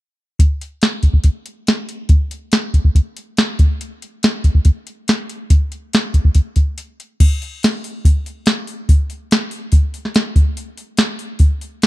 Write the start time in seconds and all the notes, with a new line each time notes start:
0.39 kick, closed hi-hat
0.61 closed hi-hat
0.82 snare, closed hi-hat
1.03 kick, closed hi-hat
1.13 kick
1.24 kick, closed hi-hat
1.46 closed hi-hat
1.67 snare, closed hi-hat
1.89 closed hi-hat
2.09 kick, closed hi-hat
2.31 closed hi-hat
2.52 snare, closed hi-hat
2.74 kick, closed hi-hat
2.85 kick
2.95 kick, closed hi-hat
3.17 closed hi-hat
3.37 snare, closed hi-hat
3.59 kick, closed hi-hat
3.81 closed hi-hat
4.02 closed hi-hat
4.23 snare, closed hi-hat
4.44 kick, closed hi-hat
4.55 kick
4.65 kick, closed hi-hat
4.87 closed hi-hat
5.08 snare, closed hi-hat
5.29 closed hi-hat
5.50 kick, closed hi-hat
5.72 closed hi-hat
5.93 snare, closed hi-hat
6.14 kick, closed hi-hat
6.25 kick
6.35 kick, closed hi-hat
6.56 kick, closed hi-hat
6.78 closed hi-hat
7.00 closed hi-hat
7.20 kick, open hi-hat, crash
7.42 open hi-hat
7.63 snare, open hi-hat
7.84 open hi-hat
8.05 kick, open hi-hat
8.26 open hi-hat
8.46 snare, open hi-hat
8.67 open hi-hat
8.89 kick, open hi-hat
9.10 open hi-hat
9.31 snare, open hi-hat
9.51 open hi-hat
9.72 kick, open hi-hat
9.94 open hi-hat
10.05 snare
10.14 snare, open hi-hat
10.36 kick, open hi-hat
10.57 open hi-hat
10.77 open hi-hat
10.97 snare, open hi-hat
11.19 open hi-hat
11.39 kick, open hi-hat
11.61 open hi-hat
11.82 snare, open hi-hat